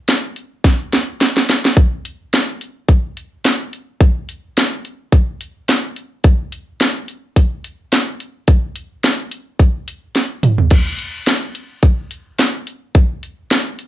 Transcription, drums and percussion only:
0.08 snare, closed hi-hat
0.36 closed hi-hat
0.64 kick, snare, closed hi-hat
0.93 snare, closed hi-hat
1.20 snare, closed hi-hat
1.37 snare
1.49 snare, closed hi-hat
1.65 snare
1.77 kick, closed hi-hat
2.05 closed hi-hat
2.33 snare, closed hi-hat
2.61 closed hi-hat
2.89 kick, closed hi-hat
3.17 closed hi-hat
3.45 snare, closed hi-hat
3.73 closed hi-hat
4.01 kick, closed hi-hat
4.29 closed hi-hat
4.57 snare, closed hi-hat
4.85 closed hi-hat
5.12 kick, closed hi-hat
5.41 closed hi-hat
5.68 snare, closed hi-hat
5.96 closed hi-hat
6.24 kick, closed hi-hat
6.52 closed hi-hat
6.80 snare, closed hi-hat
7.08 closed hi-hat
7.36 kick, closed hi-hat
7.64 closed hi-hat
7.92 snare, closed hi-hat
8.20 closed hi-hat
8.48 kick, closed hi-hat
8.76 closed hi-hat
9.03 snare, closed hi-hat
9.31 closed hi-hat
9.59 kick, closed hi-hat
9.88 closed hi-hat
10.15 snare, closed hi-hat
10.43 closed hi-hat, mid tom
10.58 floor tom
10.71 kick, closed hi-hat, crash
10.99 closed hi-hat
11.26 snare, closed hi-hat
11.55 closed hi-hat
11.83 kick, closed hi-hat
12.11 closed hi-hat
12.39 snare, closed hi-hat
12.67 closed hi-hat
12.95 kick, closed hi-hat
13.23 closed hi-hat
13.51 snare, closed hi-hat
13.79 closed hi-hat

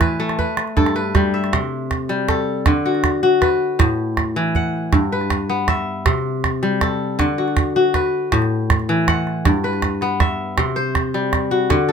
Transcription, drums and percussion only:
0.01 calabash thump, calabash click
0.29 calabash click
0.39 calabash thump
0.57 calabash click
0.68 calabash click
0.77 calabash thump
0.86 calabash click
0.96 calabash click
1.15 calabash thump, calabash click
1.34 calabash click
1.44 calabash click
1.53 calabash thump, calabash click
1.91 calabash thump, calabash click
2.29 calabash thump, calabash click
2.66 calabash thump, calabash click
2.95 calabash click
3.04 calabash thump, calabash click
3.42 calabash thump, calabash click
3.80 calabash thump, calabash click
4.17 calabash thump, calabash click
4.55 calabash thump
4.93 calabash thump, calabash click
5.21 calabash click
5.30 calabash thump, calabash click
5.68 calabash thump, calabash click
6.06 calabash thump, calabash click
6.44 calabash thump, calabash click
6.81 calabash thump, calabash click
7.19 calabash thump, calabash click
7.48 calabash click
7.57 calabash thump, calabash click
7.94 calabash thump, calabash click
8.32 calabash thump, calabash click
8.42 calabash click
8.70 calabash thump, calabash click
8.80 calabash click
9.08 calabash thump, calabash click
9.27 calabash click
9.45 calabash thump, calabash click
9.64 calabash click
9.73 calabash click
9.82 calabash thump, calabash click
10.01 calabash click
10.20 calabash thump, calabash click
10.58 calabash thump, calabash click
10.95 calabash thump, calabash click
11.33 calabash thump, calabash click
11.70 calabash thump, calabash click

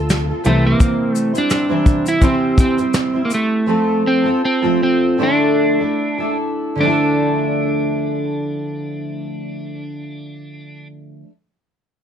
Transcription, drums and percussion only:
0.10 snare, shaker
0.45 shaker
0.80 kick, shaker
1.15 shaker
1.35 shaker
1.50 snare, shaker
1.86 kick, shaker
2.06 shaker
2.22 kick, shaker
2.58 kick, shaker
2.78 shaker
2.94 snare, shaker
3.30 snare, shaker

